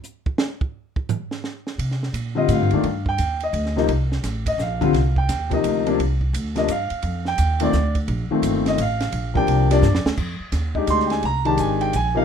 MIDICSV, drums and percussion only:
0, 0, Header, 1, 2, 480
1, 0, Start_track
1, 0, Tempo, 349650
1, 1015, Time_signature, 3, 2, 24, 8
1, 16815, End_track
2, 0, Start_track
2, 0, Title_t, "Drums"
2, 51, Note_on_c, 9, 44, 60
2, 188, Note_off_c, 9, 44, 0
2, 359, Note_on_c, 9, 36, 81
2, 497, Note_off_c, 9, 36, 0
2, 525, Note_on_c, 9, 38, 106
2, 663, Note_off_c, 9, 38, 0
2, 839, Note_on_c, 9, 36, 84
2, 977, Note_off_c, 9, 36, 0
2, 1321, Note_on_c, 9, 36, 79
2, 1458, Note_off_c, 9, 36, 0
2, 1496, Note_on_c, 9, 44, 62
2, 1499, Note_on_c, 9, 43, 111
2, 1633, Note_off_c, 9, 44, 0
2, 1636, Note_off_c, 9, 43, 0
2, 1801, Note_on_c, 9, 38, 54
2, 1939, Note_off_c, 9, 38, 0
2, 1975, Note_on_c, 9, 38, 53
2, 2113, Note_off_c, 9, 38, 0
2, 2288, Note_on_c, 9, 38, 47
2, 2426, Note_off_c, 9, 38, 0
2, 2460, Note_on_c, 9, 51, 70
2, 2598, Note_off_c, 9, 51, 0
2, 2626, Note_on_c, 9, 38, 32
2, 2763, Note_off_c, 9, 38, 0
2, 2786, Note_on_c, 9, 38, 45
2, 2923, Note_off_c, 9, 38, 0
2, 2938, Note_on_c, 9, 44, 57
2, 2938, Note_on_c, 9, 51, 72
2, 3075, Note_off_c, 9, 44, 0
2, 3075, Note_off_c, 9, 51, 0
2, 3412, Note_on_c, 9, 44, 57
2, 3412, Note_on_c, 9, 51, 76
2, 3550, Note_off_c, 9, 44, 0
2, 3550, Note_off_c, 9, 51, 0
2, 3715, Note_on_c, 9, 51, 49
2, 3852, Note_off_c, 9, 51, 0
2, 3892, Note_on_c, 9, 51, 62
2, 4030, Note_off_c, 9, 51, 0
2, 4198, Note_on_c, 9, 36, 66
2, 4336, Note_off_c, 9, 36, 0
2, 4369, Note_on_c, 9, 44, 56
2, 4369, Note_on_c, 9, 51, 75
2, 4507, Note_off_c, 9, 44, 0
2, 4507, Note_off_c, 9, 51, 0
2, 4673, Note_on_c, 9, 51, 52
2, 4810, Note_off_c, 9, 51, 0
2, 4853, Note_on_c, 9, 51, 72
2, 4990, Note_off_c, 9, 51, 0
2, 5018, Note_on_c, 9, 38, 31
2, 5155, Note_off_c, 9, 38, 0
2, 5177, Note_on_c, 9, 38, 48
2, 5314, Note_off_c, 9, 38, 0
2, 5334, Note_on_c, 9, 51, 65
2, 5471, Note_off_c, 9, 51, 0
2, 5653, Note_on_c, 9, 38, 51
2, 5790, Note_off_c, 9, 38, 0
2, 5815, Note_on_c, 9, 44, 53
2, 5815, Note_on_c, 9, 51, 71
2, 5818, Note_on_c, 9, 38, 40
2, 5952, Note_off_c, 9, 44, 0
2, 5952, Note_off_c, 9, 51, 0
2, 5955, Note_off_c, 9, 38, 0
2, 6124, Note_on_c, 9, 36, 61
2, 6128, Note_on_c, 9, 51, 81
2, 6261, Note_off_c, 9, 36, 0
2, 6265, Note_off_c, 9, 51, 0
2, 6301, Note_on_c, 9, 44, 59
2, 6304, Note_on_c, 9, 38, 41
2, 6438, Note_off_c, 9, 44, 0
2, 6441, Note_off_c, 9, 38, 0
2, 6606, Note_on_c, 9, 36, 60
2, 6613, Note_on_c, 9, 51, 49
2, 6743, Note_off_c, 9, 36, 0
2, 6750, Note_off_c, 9, 51, 0
2, 6786, Note_on_c, 9, 51, 63
2, 6789, Note_on_c, 9, 38, 38
2, 6923, Note_off_c, 9, 51, 0
2, 6926, Note_off_c, 9, 38, 0
2, 7088, Note_on_c, 9, 36, 60
2, 7225, Note_off_c, 9, 36, 0
2, 7260, Note_on_c, 9, 44, 65
2, 7260, Note_on_c, 9, 51, 76
2, 7263, Note_on_c, 9, 38, 42
2, 7398, Note_off_c, 9, 44, 0
2, 7398, Note_off_c, 9, 51, 0
2, 7400, Note_off_c, 9, 38, 0
2, 7566, Note_on_c, 9, 36, 61
2, 7568, Note_on_c, 9, 51, 55
2, 7704, Note_off_c, 9, 36, 0
2, 7705, Note_off_c, 9, 51, 0
2, 7742, Note_on_c, 9, 44, 57
2, 7742, Note_on_c, 9, 51, 82
2, 7880, Note_off_c, 9, 44, 0
2, 7880, Note_off_c, 9, 51, 0
2, 8051, Note_on_c, 9, 51, 53
2, 8188, Note_off_c, 9, 51, 0
2, 8234, Note_on_c, 9, 51, 64
2, 8371, Note_off_c, 9, 51, 0
2, 8525, Note_on_c, 9, 36, 49
2, 8662, Note_off_c, 9, 36, 0
2, 8708, Note_on_c, 9, 44, 63
2, 8708, Note_on_c, 9, 51, 81
2, 8846, Note_off_c, 9, 44, 0
2, 8846, Note_off_c, 9, 51, 0
2, 9002, Note_on_c, 9, 51, 54
2, 9004, Note_on_c, 9, 38, 40
2, 9139, Note_off_c, 9, 51, 0
2, 9142, Note_off_c, 9, 38, 0
2, 9176, Note_on_c, 9, 44, 63
2, 9176, Note_on_c, 9, 51, 84
2, 9313, Note_off_c, 9, 44, 0
2, 9313, Note_off_c, 9, 51, 0
2, 9474, Note_on_c, 9, 51, 54
2, 9611, Note_off_c, 9, 51, 0
2, 9644, Note_on_c, 9, 51, 66
2, 9781, Note_off_c, 9, 51, 0
2, 9957, Note_on_c, 9, 38, 42
2, 10094, Note_off_c, 9, 38, 0
2, 10129, Note_on_c, 9, 44, 64
2, 10129, Note_on_c, 9, 51, 81
2, 10267, Note_off_c, 9, 44, 0
2, 10267, Note_off_c, 9, 51, 0
2, 10430, Note_on_c, 9, 51, 86
2, 10567, Note_off_c, 9, 51, 0
2, 10610, Note_on_c, 9, 44, 65
2, 10613, Note_on_c, 9, 38, 43
2, 10748, Note_off_c, 9, 44, 0
2, 10750, Note_off_c, 9, 38, 0
2, 10913, Note_on_c, 9, 51, 54
2, 10915, Note_on_c, 9, 36, 65
2, 11050, Note_off_c, 9, 51, 0
2, 11053, Note_off_c, 9, 36, 0
2, 11090, Note_on_c, 9, 51, 65
2, 11227, Note_off_c, 9, 51, 0
2, 11571, Note_on_c, 9, 44, 69
2, 11571, Note_on_c, 9, 51, 84
2, 11709, Note_off_c, 9, 44, 0
2, 11709, Note_off_c, 9, 51, 0
2, 11888, Note_on_c, 9, 51, 55
2, 11891, Note_on_c, 9, 38, 58
2, 12025, Note_off_c, 9, 51, 0
2, 12028, Note_off_c, 9, 38, 0
2, 12056, Note_on_c, 9, 44, 60
2, 12056, Note_on_c, 9, 51, 90
2, 12193, Note_off_c, 9, 44, 0
2, 12193, Note_off_c, 9, 51, 0
2, 12361, Note_on_c, 9, 51, 57
2, 12363, Note_on_c, 9, 38, 61
2, 12498, Note_off_c, 9, 51, 0
2, 12501, Note_off_c, 9, 38, 0
2, 12526, Note_on_c, 9, 51, 69
2, 12663, Note_off_c, 9, 51, 0
2, 12841, Note_on_c, 9, 36, 75
2, 12978, Note_off_c, 9, 36, 0
2, 13013, Note_on_c, 9, 51, 75
2, 13150, Note_off_c, 9, 51, 0
2, 13327, Note_on_c, 9, 51, 78
2, 13330, Note_on_c, 9, 38, 48
2, 13464, Note_off_c, 9, 51, 0
2, 13467, Note_off_c, 9, 38, 0
2, 13492, Note_on_c, 9, 44, 75
2, 13495, Note_on_c, 9, 38, 60
2, 13629, Note_off_c, 9, 44, 0
2, 13632, Note_off_c, 9, 38, 0
2, 13654, Note_on_c, 9, 38, 80
2, 13792, Note_off_c, 9, 38, 0
2, 13811, Note_on_c, 9, 38, 104
2, 13948, Note_off_c, 9, 38, 0
2, 13966, Note_on_c, 9, 49, 75
2, 13971, Note_on_c, 9, 36, 69
2, 14104, Note_off_c, 9, 49, 0
2, 14108, Note_off_c, 9, 36, 0
2, 14444, Note_on_c, 9, 44, 55
2, 14444, Note_on_c, 9, 51, 72
2, 14447, Note_on_c, 9, 38, 40
2, 14581, Note_off_c, 9, 44, 0
2, 14581, Note_off_c, 9, 51, 0
2, 14584, Note_off_c, 9, 38, 0
2, 14757, Note_on_c, 9, 36, 58
2, 14895, Note_off_c, 9, 36, 0
2, 14926, Note_on_c, 9, 44, 63
2, 14926, Note_on_c, 9, 51, 73
2, 15063, Note_off_c, 9, 44, 0
2, 15063, Note_off_c, 9, 51, 0
2, 15094, Note_on_c, 9, 38, 30
2, 15231, Note_off_c, 9, 38, 0
2, 15239, Note_on_c, 9, 51, 52
2, 15253, Note_on_c, 9, 38, 49
2, 15376, Note_off_c, 9, 51, 0
2, 15390, Note_off_c, 9, 38, 0
2, 15413, Note_on_c, 9, 51, 61
2, 15550, Note_off_c, 9, 51, 0
2, 15721, Note_on_c, 9, 51, 47
2, 15858, Note_off_c, 9, 51, 0
2, 15892, Note_on_c, 9, 44, 63
2, 15892, Note_on_c, 9, 51, 70
2, 16029, Note_off_c, 9, 44, 0
2, 16029, Note_off_c, 9, 51, 0
2, 16210, Note_on_c, 9, 51, 49
2, 16347, Note_off_c, 9, 51, 0
2, 16379, Note_on_c, 9, 44, 62
2, 16379, Note_on_c, 9, 51, 71
2, 16517, Note_off_c, 9, 44, 0
2, 16517, Note_off_c, 9, 51, 0
2, 16815, End_track
0, 0, End_of_file